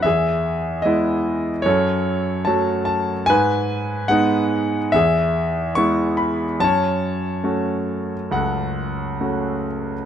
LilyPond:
<<
  \new Staff \with { instrumentName = "Grand piano" } { \time 4/4 \key fis \dorian \tempo 4 = 72 << { e''4 dis''4 cis''4 a''8 a''8 | gis''4 fis''4 e''4 cis'''8 b''8 | a''2 fis''4. r8 | } \\ { gis'2 a'2 | b'2 gis'2 | cis''2 a'2 | } >> }
  \new Staff \with { instrumentName = "Grand piano" } { \time 4/4 \key fis \dorian e,4 <gis b e'>4 fis,4 <fis a fis'>4 | gis,4 <gis b dis'>4 e,4 <gis b e'>4 | fis,4 <a cis' fis'>4 cis,4 <a cis' fis'>4 | }
>>